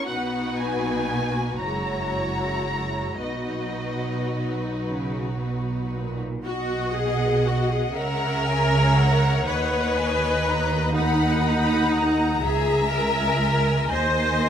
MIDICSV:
0, 0, Header, 1, 6, 480
1, 0, Start_track
1, 0, Key_signature, 5, "major"
1, 0, Tempo, 1022147
1, 42, Time_signature, 6, 3, 24, 8
1, 1002, Tempo, 1079137
1, 2922, Tempo, 1000000
1, 4842, Tempo, 980392
1, 6820, End_track
2, 0, Start_track
2, 0, Title_t, "Violin section"
2, 0, Program_c, 0, 48
2, 0, Note_on_c, 0, 70, 61
2, 0, Note_on_c, 0, 73, 56
2, 45, Note_on_c, 0, 66, 61
2, 47, Note_on_c, 0, 71, 60
2, 48, Note_off_c, 0, 70, 0
2, 48, Note_off_c, 0, 73, 0
2, 742, Note_off_c, 0, 66, 0
2, 743, Note_off_c, 0, 71, 0
2, 758, Note_on_c, 0, 66, 59
2, 758, Note_on_c, 0, 73, 58
2, 1467, Note_off_c, 0, 66, 0
2, 1482, Note_off_c, 0, 73, 0
2, 1484, Note_on_c, 0, 66, 48
2, 1484, Note_on_c, 0, 71, 51
2, 2816, Note_off_c, 0, 66, 0
2, 2816, Note_off_c, 0, 71, 0
2, 2930, Note_on_c, 0, 75, 65
2, 2932, Note_on_c, 0, 78, 62
2, 3631, Note_off_c, 0, 75, 0
2, 3632, Note_off_c, 0, 78, 0
2, 3647, Note_on_c, 0, 78, 70
2, 3649, Note_on_c, 0, 76, 71
2, 3886, Note_off_c, 0, 78, 0
2, 3892, Note_on_c, 0, 80, 70
2, 4130, Note_off_c, 0, 80, 0
2, 4133, Note_on_c, 0, 78, 85
2, 4367, Note_off_c, 0, 76, 0
2, 4369, Note_off_c, 0, 78, 0
2, 4371, Note_on_c, 0, 75, 68
2, 4375, Note_on_c, 0, 78, 72
2, 4605, Note_off_c, 0, 78, 0
2, 4618, Note_on_c, 0, 80, 68
2, 4850, Note_off_c, 0, 80, 0
2, 4854, Note_on_c, 0, 82, 68
2, 5086, Note_off_c, 0, 75, 0
2, 5088, Note_off_c, 0, 82, 0
2, 5092, Note_on_c, 0, 83, 62
2, 5093, Note_on_c, 0, 78, 80
2, 5324, Note_off_c, 0, 78, 0
2, 5332, Note_off_c, 0, 83, 0
2, 5338, Note_on_c, 0, 83, 75
2, 5572, Note_off_c, 0, 83, 0
2, 5572, Note_on_c, 0, 82, 83
2, 5810, Note_on_c, 0, 80, 65
2, 6517, Note_off_c, 0, 80, 0
2, 6528, Note_on_c, 0, 80, 59
2, 6529, Note_off_c, 0, 80, 0
2, 6529, Note_on_c, 0, 80, 71
2, 6533, Note_off_c, 0, 82, 0
2, 6820, Note_off_c, 0, 80, 0
2, 6820, End_track
3, 0, Start_track
3, 0, Title_t, "Violin section"
3, 0, Program_c, 1, 48
3, 37, Note_on_c, 1, 78, 80
3, 274, Note_off_c, 1, 78, 0
3, 274, Note_on_c, 1, 80, 87
3, 754, Note_on_c, 1, 82, 80
3, 756, Note_off_c, 1, 80, 0
3, 1465, Note_off_c, 1, 82, 0
3, 1485, Note_on_c, 1, 75, 62
3, 2196, Note_off_c, 1, 75, 0
3, 3641, Note_on_c, 1, 73, 89
3, 5060, Note_off_c, 1, 73, 0
3, 5077, Note_on_c, 1, 78, 90
3, 5802, Note_off_c, 1, 78, 0
3, 5804, Note_on_c, 1, 76, 90
3, 6520, Note_on_c, 1, 75, 98
3, 6528, Note_off_c, 1, 76, 0
3, 6820, Note_off_c, 1, 75, 0
3, 6820, End_track
4, 0, Start_track
4, 0, Title_t, "Viola section"
4, 0, Program_c, 2, 48
4, 48, Note_on_c, 2, 59, 67
4, 48, Note_on_c, 2, 63, 67
4, 385, Note_off_c, 2, 59, 0
4, 411, Note_on_c, 2, 58, 55
4, 744, Note_off_c, 2, 63, 0
4, 765, Note_off_c, 2, 58, 0
4, 769, Note_on_c, 2, 64, 54
4, 772, Note_on_c, 2, 56, 53
4, 1474, Note_off_c, 2, 56, 0
4, 1486, Note_on_c, 2, 54, 53
4, 1487, Note_off_c, 2, 64, 0
4, 1487, Note_on_c, 2, 63, 59
4, 2817, Note_off_c, 2, 63, 0
4, 2835, Note_off_c, 2, 54, 0
4, 2923, Note_on_c, 2, 66, 103
4, 3150, Note_off_c, 2, 66, 0
4, 3165, Note_on_c, 2, 68, 105
4, 3408, Note_off_c, 2, 68, 0
4, 3408, Note_on_c, 2, 66, 98
4, 3526, Note_on_c, 2, 68, 91
4, 3528, Note_off_c, 2, 66, 0
4, 3645, Note_on_c, 2, 70, 116
4, 3647, Note_off_c, 2, 68, 0
4, 4366, Note_off_c, 2, 70, 0
4, 4366, Note_on_c, 2, 71, 113
4, 5069, Note_off_c, 2, 71, 0
4, 5091, Note_on_c, 2, 63, 109
4, 5806, Note_on_c, 2, 68, 110
4, 5809, Note_off_c, 2, 63, 0
4, 6044, Note_off_c, 2, 68, 0
4, 6047, Note_on_c, 2, 70, 106
4, 6518, Note_off_c, 2, 70, 0
4, 6539, Note_on_c, 2, 72, 105
4, 6820, Note_off_c, 2, 72, 0
4, 6820, End_track
5, 0, Start_track
5, 0, Title_t, "Cello section"
5, 0, Program_c, 3, 48
5, 44, Note_on_c, 3, 47, 63
5, 742, Note_off_c, 3, 47, 0
5, 763, Note_on_c, 3, 42, 51
5, 1470, Note_off_c, 3, 42, 0
5, 1483, Note_on_c, 3, 47, 46
5, 2148, Note_off_c, 3, 47, 0
5, 2210, Note_on_c, 3, 49, 55
5, 2433, Note_off_c, 3, 49, 0
5, 2449, Note_on_c, 3, 47, 44
5, 2691, Note_off_c, 3, 47, 0
5, 2693, Note_on_c, 3, 46, 45
5, 2924, Note_on_c, 3, 47, 63
5, 2925, Note_off_c, 3, 46, 0
5, 3628, Note_off_c, 3, 47, 0
5, 3647, Note_on_c, 3, 49, 67
5, 4367, Note_off_c, 3, 49, 0
5, 4372, Note_on_c, 3, 39, 75
5, 5788, Note_off_c, 3, 39, 0
5, 5811, Note_on_c, 3, 37, 85
5, 6517, Note_off_c, 3, 37, 0
5, 6531, Note_on_c, 3, 39, 81
5, 6820, Note_off_c, 3, 39, 0
5, 6820, End_track
6, 0, Start_track
6, 0, Title_t, "Double bass section"
6, 0, Program_c, 4, 48
6, 48, Note_on_c, 4, 35, 62
6, 744, Note_off_c, 4, 35, 0
6, 768, Note_on_c, 4, 30, 56
6, 1472, Note_off_c, 4, 30, 0
6, 1484, Note_on_c, 4, 35, 53
6, 2816, Note_off_c, 4, 35, 0
6, 2935, Note_on_c, 4, 35, 68
6, 3634, Note_off_c, 4, 35, 0
6, 3651, Note_on_c, 4, 37, 72
6, 4368, Note_off_c, 4, 37, 0
6, 4373, Note_on_c, 4, 39, 82
6, 5789, Note_off_c, 4, 39, 0
6, 5807, Note_on_c, 4, 37, 74
6, 6515, Note_off_c, 4, 37, 0
6, 6535, Note_on_c, 4, 39, 74
6, 6820, Note_off_c, 4, 39, 0
6, 6820, End_track
0, 0, End_of_file